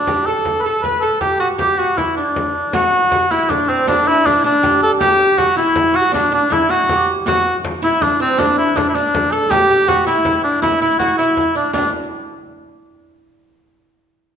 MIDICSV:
0, 0, Header, 1, 6, 480
1, 0, Start_track
1, 0, Tempo, 378549
1, 572, Time_signature, 6, 3, 24, 8
1, 9206, Tempo, 371517
1, 18379, End_track
2, 0, Start_track
2, 0, Title_t, "Cor anglais"
2, 0, Program_c, 0, 69
2, 0, Note_on_c, 0, 62, 85
2, 325, Note_on_c, 0, 69, 99
2, 345, Note_off_c, 0, 62, 0
2, 751, Note_off_c, 0, 69, 0
2, 757, Note_on_c, 0, 71, 68
2, 796, Note_on_c, 0, 69, 88
2, 815, Note_off_c, 0, 71, 0
2, 1037, Note_on_c, 0, 71, 84
2, 1056, Note_off_c, 0, 69, 0
2, 1282, Note_on_c, 0, 69, 90
2, 1301, Note_off_c, 0, 71, 0
2, 1524, Note_off_c, 0, 69, 0
2, 1531, Note_on_c, 0, 67, 74
2, 1759, Note_off_c, 0, 67, 0
2, 1771, Note_on_c, 0, 66, 79
2, 1882, Note_off_c, 0, 66, 0
2, 2018, Note_on_c, 0, 67, 82
2, 2268, Note_on_c, 0, 66, 75
2, 2287, Note_off_c, 0, 67, 0
2, 2503, Note_on_c, 0, 64, 75
2, 2522, Note_off_c, 0, 66, 0
2, 2744, Note_off_c, 0, 64, 0
2, 2750, Note_on_c, 0, 62, 74
2, 3419, Note_off_c, 0, 62, 0
2, 3478, Note_on_c, 0, 66, 108
2, 4196, Note_on_c, 0, 64, 94
2, 4215, Note_off_c, 0, 66, 0
2, 4439, Note_on_c, 0, 62, 89
2, 4458, Note_off_c, 0, 64, 0
2, 4682, Note_on_c, 0, 60, 91
2, 4701, Note_off_c, 0, 62, 0
2, 4914, Note_off_c, 0, 60, 0
2, 4925, Note_on_c, 0, 62, 102
2, 5170, Note_on_c, 0, 64, 110
2, 5189, Note_off_c, 0, 62, 0
2, 5405, Note_on_c, 0, 62, 96
2, 5424, Note_off_c, 0, 64, 0
2, 5635, Note_off_c, 0, 62, 0
2, 5649, Note_on_c, 0, 62, 105
2, 6083, Note_off_c, 0, 62, 0
2, 6128, Note_on_c, 0, 69, 107
2, 6231, Note_off_c, 0, 69, 0
2, 6350, Note_on_c, 0, 67, 109
2, 6828, Note_on_c, 0, 66, 102
2, 6847, Note_off_c, 0, 67, 0
2, 7060, Note_off_c, 0, 66, 0
2, 7067, Note_on_c, 0, 64, 105
2, 7553, Note_on_c, 0, 66, 117
2, 7572, Note_off_c, 0, 64, 0
2, 7778, Note_off_c, 0, 66, 0
2, 7786, Note_on_c, 0, 62, 100
2, 8003, Note_off_c, 0, 62, 0
2, 8043, Note_on_c, 0, 62, 97
2, 8278, Note_on_c, 0, 64, 99
2, 8297, Note_off_c, 0, 62, 0
2, 8497, Note_on_c, 0, 66, 106
2, 8516, Note_off_c, 0, 64, 0
2, 9029, Note_off_c, 0, 66, 0
2, 9217, Note_on_c, 0, 66, 100
2, 9602, Note_off_c, 0, 66, 0
2, 9958, Note_on_c, 0, 64, 101
2, 10194, Note_on_c, 0, 62, 92
2, 10214, Note_off_c, 0, 64, 0
2, 10425, Note_off_c, 0, 62, 0
2, 10439, Note_on_c, 0, 60, 97
2, 10673, Note_on_c, 0, 62, 98
2, 10693, Note_off_c, 0, 60, 0
2, 10906, Note_off_c, 0, 62, 0
2, 10913, Note_on_c, 0, 64, 98
2, 11154, Note_on_c, 0, 62, 84
2, 11173, Note_off_c, 0, 64, 0
2, 11299, Note_off_c, 0, 62, 0
2, 11307, Note_on_c, 0, 64, 73
2, 11388, Note_on_c, 0, 62, 92
2, 11407, Note_off_c, 0, 64, 0
2, 11867, Note_on_c, 0, 69, 104
2, 11886, Note_off_c, 0, 62, 0
2, 12110, Note_on_c, 0, 67, 109
2, 12130, Note_off_c, 0, 69, 0
2, 12600, Note_on_c, 0, 66, 95
2, 12619, Note_off_c, 0, 67, 0
2, 12828, Note_off_c, 0, 66, 0
2, 12836, Note_on_c, 0, 64, 93
2, 13278, Note_off_c, 0, 64, 0
2, 13315, Note_on_c, 0, 62, 94
2, 13534, Note_off_c, 0, 62, 0
2, 13549, Note_on_c, 0, 64, 96
2, 13771, Note_off_c, 0, 64, 0
2, 13798, Note_on_c, 0, 64, 96
2, 14016, Note_off_c, 0, 64, 0
2, 14027, Note_on_c, 0, 66, 88
2, 14250, Note_off_c, 0, 66, 0
2, 14268, Note_on_c, 0, 64, 92
2, 14713, Note_off_c, 0, 64, 0
2, 14768, Note_on_c, 0, 62, 78
2, 14980, Note_off_c, 0, 62, 0
2, 14986, Note_on_c, 0, 62, 94
2, 15208, Note_off_c, 0, 62, 0
2, 18379, End_track
3, 0, Start_track
3, 0, Title_t, "Oud"
3, 0, Program_c, 1, 24
3, 99, Note_on_c, 1, 67, 71
3, 342, Note_off_c, 1, 67, 0
3, 354, Note_on_c, 1, 69, 72
3, 823, Note_off_c, 1, 69, 0
3, 838, Note_on_c, 1, 69, 73
3, 1052, Note_off_c, 1, 69, 0
3, 1073, Note_on_c, 1, 71, 81
3, 1298, Note_off_c, 1, 71, 0
3, 1303, Note_on_c, 1, 69, 80
3, 1529, Note_off_c, 1, 69, 0
3, 1534, Note_on_c, 1, 67, 74
3, 1768, Note_off_c, 1, 67, 0
3, 1773, Note_on_c, 1, 66, 67
3, 2004, Note_off_c, 1, 66, 0
3, 2009, Note_on_c, 1, 67, 72
3, 2253, Note_off_c, 1, 67, 0
3, 2258, Note_on_c, 1, 66, 69
3, 2498, Note_off_c, 1, 66, 0
3, 2503, Note_on_c, 1, 64, 70
3, 2751, Note_off_c, 1, 64, 0
3, 2757, Note_on_c, 1, 62, 62
3, 3422, Note_off_c, 1, 62, 0
3, 3471, Note_on_c, 1, 66, 89
3, 3929, Note_off_c, 1, 66, 0
3, 3944, Note_on_c, 1, 66, 82
3, 4193, Note_off_c, 1, 66, 0
3, 4204, Note_on_c, 1, 64, 78
3, 4419, Note_off_c, 1, 64, 0
3, 4424, Note_on_c, 1, 62, 83
3, 4667, Note_off_c, 1, 62, 0
3, 4672, Note_on_c, 1, 60, 73
3, 4901, Note_off_c, 1, 60, 0
3, 4906, Note_on_c, 1, 62, 75
3, 5131, Note_off_c, 1, 62, 0
3, 5136, Note_on_c, 1, 64, 87
3, 5389, Note_off_c, 1, 64, 0
3, 5398, Note_on_c, 1, 62, 84
3, 5616, Note_off_c, 1, 62, 0
3, 5632, Note_on_c, 1, 62, 80
3, 5852, Note_off_c, 1, 62, 0
3, 5873, Note_on_c, 1, 67, 94
3, 6337, Note_off_c, 1, 67, 0
3, 6352, Note_on_c, 1, 67, 88
3, 6819, Note_off_c, 1, 67, 0
3, 6824, Note_on_c, 1, 66, 89
3, 7051, Note_off_c, 1, 66, 0
3, 7056, Note_on_c, 1, 64, 90
3, 7526, Note_off_c, 1, 64, 0
3, 7531, Note_on_c, 1, 66, 87
3, 7753, Note_off_c, 1, 66, 0
3, 7758, Note_on_c, 1, 62, 91
3, 7996, Note_off_c, 1, 62, 0
3, 8011, Note_on_c, 1, 62, 83
3, 8235, Note_off_c, 1, 62, 0
3, 8245, Note_on_c, 1, 64, 94
3, 8478, Note_off_c, 1, 64, 0
3, 8483, Note_on_c, 1, 66, 88
3, 8773, Note_off_c, 1, 66, 0
3, 8778, Note_on_c, 1, 67, 86
3, 9004, Note_off_c, 1, 67, 0
3, 9213, Note_on_c, 1, 66, 89
3, 9599, Note_off_c, 1, 66, 0
3, 9937, Note_on_c, 1, 64, 92
3, 10181, Note_off_c, 1, 64, 0
3, 10186, Note_on_c, 1, 62, 85
3, 10417, Note_off_c, 1, 62, 0
3, 10423, Note_on_c, 1, 60, 79
3, 10641, Note_off_c, 1, 60, 0
3, 10647, Note_on_c, 1, 62, 86
3, 11125, Note_off_c, 1, 62, 0
3, 11140, Note_on_c, 1, 62, 91
3, 11377, Note_off_c, 1, 62, 0
3, 11392, Note_on_c, 1, 62, 88
3, 11835, Note_off_c, 1, 62, 0
3, 11873, Note_on_c, 1, 69, 90
3, 12115, Note_off_c, 1, 69, 0
3, 12124, Note_on_c, 1, 67, 102
3, 12348, Note_off_c, 1, 67, 0
3, 12363, Note_on_c, 1, 67, 88
3, 12588, Note_off_c, 1, 67, 0
3, 12593, Note_on_c, 1, 66, 105
3, 12827, Note_off_c, 1, 66, 0
3, 12832, Note_on_c, 1, 64, 93
3, 13066, Note_off_c, 1, 64, 0
3, 13081, Note_on_c, 1, 64, 94
3, 13550, Note_off_c, 1, 64, 0
3, 13565, Note_on_c, 1, 64, 93
3, 13790, Note_off_c, 1, 64, 0
3, 13805, Note_on_c, 1, 64, 88
3, 14033, Note_off_c, 1, 64, 0
3, 14039, Note_on_c, 1, 66, 95
3, 14278, Note_off_c, 1, 66, 0
3, 14283, Note_on_c, 1, 64, 88
3, 14747, Note_off_c, 1, 64, 0
3, 14752, Note_on_c, 1, 62, 71
3, 14971, Note_off_c, 1, 62, 0
3, 14995, Note_on_c, 1, 62, 96
3, 15213, Note_off_c, 1, 62, 0
3, 18379, End_track
4, 0, Start_track
4, 0, Title_t, "Recorder"
4, 0, Program_c, 2, 74
4, 0, Note_on_c, 2, 62, 78
4, 296, Note_off_c, 2, 62, 0
4, 316, Note_on_c, 2, 69, 84
4, 997, Note_off_c, 2, 69, 0
4, 1050, Note_on_c, 2, 71, 75
4, 1274, Note_off_c, 2, 71, 0
4, 1282, Note_on_c, 2, 69, 83
4, 1547, Note_on_c, 2, 67, 75
4, 1566, Note_off_c, 2, 69, 0
4, 1779, Note_on_c, 2, 66, 72
4, 1798, Note_off_c, 2, 67, 0
4, 2016, Note_off_c, 2, 66, 0
4, 2024, Note_on_c, 2, 67, 82
4, 2247, Note_off_c, 2, 67, 0
4, 2261, Note_on_c, 2, 66, 70
4, 2486, Note_off_c, 2, 66, 0
4, 2491, Note_on_c, 2, 64, 61
4, 2567, Note_off_c, 2, 64, 0
4, 2740, Note_on_c, 2, 62, 62
4, 2837, Note_on_c, 2, 64, 52
4, 2856, Note_off_c, 2, 62, 0
4, 2913, Note_on_c, 2, 62, 67
4, 2932, Note_off_c, 2, 64, 0
4, 3220, Note_off_c, 2, 62, 0
4, 3470, Note_on_c, 2, 66, 100
4, 3915, Note_off_c, 2, 66, 0
4, 3975, Note_on_c, 2, 66, 97
4, 4022, Note_on_c, 2, 67, 76
4, 4041, Note_off_c, 2, 66, 0
4, 4080, Note_on_c, 2, 66, 91
4, 4099, Note_off_c, 2, 67, 0
4, 4189, Note_off_c, 2, 66, 0
4, 4197, Note_on_c, 2, 64, 90
4, 4444, Note_on_c, 2, 62, 92
4, 4463, Note_off_c, 2, 64, 0
4, 4916, Note_off_c, 2, 62, 0
4, 4921, Note_on_c, 2, 62, 87
4, 5360, Note_off_c, 2, 62, 0
4, 5394, Note_on_c, 2, 62, 79
4, 5540, Note_off_c, 2, 62, 0
4, 5550, Note_on_c, 2, 64, 69
4, 5627, Note_on_c, 2, 62, 96
4, 5646, Note_off_c, 2, 64, 0
4, 6350, Note_on_c, 2, 67, 105
4, 6369, Note_off_c, 2, 62, 0
4, 6825, Note_off_c, 2, 67, 0
4, 6843, Note_on_c, 2, 66, 93
4, 7055, Note_off_c, 2, 66, 0
4, 7068, Note_on_c, 2, 64, 105
4, 7559, Note_on_c, 2, 66, 90
4, 7578, Note_off_c, 2, 64, 0
4, 7614, Note_on_c, 2, 67, 82
4, 7633, Note_off_c, 2, 66, 0
4, 7675, Note_on_c, 2, 66, 93
4, 7694, Note_off_c, 2, 67, 0
4, 7774, Note_off_c, 2, 66, 0
4, 7781, Note_on_c, 2, 62, 92
4, 8001, Note_off_c, 2, 62, 0
4, 8023, Note_on_c, 2, 62, 92
4, 8241, Note_off_c, 2, 62, 0
4, 8266, Note_on_c, 2, 64, 86
4, 8481, Note_off_c, 2, 64, 0
4, 8493, Note_on_c, 2, 66, 93
4, 8990, Note_off_c, 2, 66, 0
4, 9215, Note_on_c, 2, 66, 96
4, 9600, Note_off_c, 2, 66, 0
4, 9945, Note_on_c, 2, 64, 97
4, 10172, Note_on_c, 2, 62, 87
4, 10191, Note_off_c, 2, 64, 0
4, 10405, Note_off_c, 2, 62, 0
4, 10413, Note_on_c, 2, 60, 82
4, 10643, Note_on_c, 2, 62, 84
4, 10662, Note_off_c, 2, 60, 0
4, 11126, Note_off_c, 2, 62, 0
4, 11134, Note_on_c, 2, 62, 86
4, 11361, Note_off_c, 2, 62, 0
4, 11372, Note_on_c, 2, 62, 92
4, 12088, Note_on_c, 2, 67, 96
4, 12108, Note_off_c, 2, 62, 0
4, 12577, Note_off_c, 2, 67, 0
4, 12593, Note_on_c, 2, 66, 89
4, 12825, Note_on_c, 2, 64, 87
4, 12844, Note_off_c, 2, 66, 0
4, 13324, Note_on_c, 2, 62, 76
4, 13343, Note_off_c, 2, 64, 0
4, 13555, Note_on_c, 2, 64, 88
4, 13574, Note_off_c, 2, 62, 0
4, 14262, Note_off_c, 2, 64, 0
4, 14270, Note_on_c, 2, 64, 83
4, 14491, Note_off_c, 2, 64, 0
4, 14516, Note_on_c, 2, 64, 80
4, 14734, Note_off_c, 2, 64, 0
4, 14750, Note_on_c, 2, 62, 65
4, 14970, Note_off_c, 2, 62, 0
4, 15002, Note_on_c, 2, 62, 98
4, 15079, Note_off_c, 2, 62, 0
4, 18379, End_track
5, 0, Start_track
5, 0, Title_t, "Frame drum"
5, 92, Note_on_c, 9, 64, 88
5, 219, Note_off_c, 9, 64, 0
5, 575, Note_on_c, 9, 64, 81
5, 702, Note_off_c, 9, 64, 0
5, 1060, Note_on_c, 9, 64, 77
5, 1187, Note_off_c, 9, 64, 0
5, 1297, Note_on_c, 9, 64, 26
5, 1423, Note_off_c, 9, 64, 0
5, 1534, Note_on_c, 9, 64, 91
5, 1660, Note_off_c, 9, 64, 0
5, 2016, Note_on_c, 9, 64, 84
5, 2143, Note_off_c, 9, 64, 0
5, 2509, Note_on_c, 9, 64, 88
5, 2636, Note_off_c, 9, 64, 0
5, 2996, Note_on_c, 9, 64, 92
5, 3123, Note_off_c, 9, 64, 0
5, 3234, Note_on_c, 9, 64, 27
5, 3360, Note_off_c, 9, 64, 0
5, 3465, Note_on_c, 9, 64, 116
5, 3592, Note_off_c, 9, 64, 0
5, 3954, Note_on_c, 9, 64, 98
5, 4080, Note_off_c, 9, 64, 0
5, 4437, Note_on_c, 9, 64, 98
5, 4564, Note_off_c, 9, 64, 0
5, 4690, Note_on_c, 9, 64, 29
5, 4817, Note_off_c, 9, 64, 0
5, 4918, Note_on_c, 9, 64, 88
5, 5045, Note_off_c, 9, 64, 0
5, 5405, Note_on_c, 9, 64, 89
5, 5532, Note_off_c, 9, 64, 0
5, 5881, Note_on_c, 9, 64, 94
5, 6007, Note_off_c, 9, 64, 0
5, 6111, Note_on_c, 9, 64, 28
5, 6237, Note_off_c, 9, 64, 0
5, 6352, Note_on_c, 9, 64, 94
5, 6478, Note_off_c, 9, 64, 0
5, 6825, Note_on_c, 9, 64, 87
5, 6952, Note_off_c, 9, 64, 0
5, 7299, Note_on_c, 9, 64, 100
5, 7426, Note_off_c, 9, 64, 0
5, 7549, Note_on_c, 9, 64, 28
5, 7676, Note_off_c, 9, 64, 0
5, 7791, Note_on_c, 9, 64, 82
5, 7918, Note_off_c, 9, 64, 0
5, 8268, Note_on_c, 9, 64, 93
5, 8395, Note_off_c, 9, 64, 0
5, 8506, Note_on_c, 9, 64, 29
5, 8633, Note_off_c, 9, 64, 0
5, 8740, Note_on_c, 9, 64, 100
5, 8867, Note_off_c, 9, 64, 0
5, 8986, Note_on_c, 9, 64, 33
5, 9113, Note_off_c, 9, 64, 0
5, 9228, Note_on_c, 9, 64, 109
5, 9357, Note_off_c, 9, 64, 0
5, 9703, Note_on_c, 9, 64, 101
5, 9833, Note_off_c, 9, 64, 0
5, 10184, Note_on_c, 9, 64, 104
5, 10314, Note_off_c, 9, 64, 0
5, 10434, Note_on_c, 9, 64, 35
5, 10563, Note_off_c, 9, 64, 0
5, 10674, Note_on_c, 9, 64, 96
5, 10804, Note_off_c, 9, 64, 0
5, 11157, Note_on_c, 9, 64, 109
5, 11286, Note_off_c, 9, 64, 0
5, 11642, Note_on_c, 9, 64, 108
5, 11771, Note_off_c, 9, 64, 0
5, 11877, Note_on_c, 9, 64, 31
5, 12006, Note_off_c, 9, 64, 0
5, 12113, Note_on_c, 9, 64, 99
5, 12242, Note_off_c, 9, 64, 0
5, 12596, Note_on_c, 9, 64, 94
5, 12725, Note_off_c, 9, 64, 0
5, 13069, Note_on_c, 9, 64, 96
5, 13198, Note_off_c, 9, 64, 0
5, 13321, Note_on_c, 9, 64, 26
5, 13450, Note_off_c, 9, 64, 0
5, 13561, Note_on_c, 9, 64, 81
5, 13690, Note_off_c, 9, 64, 0
5, 14031, Note_on_c, 9, 64, 79
5, 14160, Note_off_c, 9, 64, 0
5, 14277, Note_on_c, 9, 64, 26
5, 14406, Note_off_c, 9, 64, 0
5, 14516, Note_on_c, 9, 64, 92
5, 14645, Note_off_c, 9, 64, 0
5, 14755, Note_on_c, 9, 64, 28
5, 14885, Note_off_c, 9, 64, 0
5, 14993, Note_on_c, 9, 64, 85
5, 15123, Note_off_c, 9, 64, 0
5, 18379, End_track
6, 0, Start_track
6, 0, Title_t, "Riq"
6, 3467, Note_on_c, 9, 54, 65
6, 3594, Note_off_c, 9, 54, 0
6, 3952, Note_on_c, 9, 54, 25
6, 4079, Note_off_c, 9, 54, 0
6, 4195, Note_on_c, 9, 54, 53
6, 4321, Note_off_c, 9, 54, 0
6, 4670, Note_on_c, 9, 54, 23
6, 4797, Note_off_c, 9, 54, 0
6, 4912, Note_on_c, 9, 54, 81
6, 5039, Note_off_c, 9, 54, 0
6, 5392, Note_on_c, 9, 54, 27
6, 5518, Note_off_c, 9, 54, 0
6, 5633, Note_on_c, 9, 54, 55
6, 5760, Note_off_c, 9, 54, 0
6, 6114, Note_on_c, 9, 54, 24
6, 6241, Note_off_c, 9, 54, 0
6, 6347, Note_on_c, 9, 54, 71
6, 6474, Note_off_c, 9, 54, 0
6, 6831, Note_on_c, 9, 54, 24
6, 6958, Note_off_c, 9, 54, 0
6, 7066, Note_on_c, 9, 54, 49
6, 7193, Note_off_c, 9, 54, 0
6, 7547, Note_on_c, 9, 54, 20
6, 7674, Note_off_c, 9, 54, 0
6, 7776, Note_on_c, 9, 54, 58
6, 7903, Note_off_c, 9, 54, 0
6, 8491, Note_on_c, 9, 54, 50
6, 8617, Note_off_c, 9, 54, 0
6, 9205, Note_on_c, 9, 54, 72
6, 9334, Note_off_c, 9, 54, 0
6, 9688, Note_on_c, 9, 54, 23
6, 9817, Note_off_c, 9, 54, 0
6, 9929, Note_on_c, 9, 54, 54
6, 10059, Note_off_c, 9, 54, 0
6, 10424, Note_on_c, 9, 54, 22
6, 10553, Note_off_c, 9, 54, 0
6, 10659, Note_on_c, 9, 54, 70
6, 10788, Note_off_c, 9, 54, 0
6, 11140, Note_on_c, 9, 54, 23
6, 11269, Note_off_c, 9, 54, 0
6, 11382, Note_on_c, 9, 54, 52
6, 11512, Note_off_c, 9, 54, 0
6, 11871, Note_on_c, 9, 54, 22
6, 12000, Note_off_c, 9, 54, 0
6, 12107, Note_on_c, 9, 54, 77
6, 12236, Note_off_c, 9, 54, 0
6, 12592, Note_on_c, 9, 54, 25
6, 12721, Note_off_c, 9, 54, 0
6, 12836, Note_on_c, 9, 54, 51
6, 12965, Note_off_c, 9, 54, 0
6, 13313, Note_on_c, 9, 54, 22
6, 13442, Note_off_c, 9, 54, 0
6, 13549, Note_on_c, 9, 54, 64
6, 13679, Note_off_c, 9, 54, 0
6, 13795, Note_on_c, 9, 54, 22
6, 13924, Note_off_c, 9, 54, 0
6, 14035, Note_on_c, 9, 54, 23
6, 14164, Note_off_c, 9, 54, 0
6, 14277, Note_on_c, 9, 54, 48
6, 14406, Note_off_c, 9, 54, 0
6, 14511, Note_on_c, 9, 54, 23
6, 14640, Note_off_c, 9, 54, 0
6, 14749, Note_on_c, 9, 54, 21
6, 14878, Note_off_c, 9, 54, 0
6, 14986, Note_on_c, 9, 54, 84
6, 15116, Note_off_c, 9, 54, 0
6, 18379, End_track
0, 0, End_of_file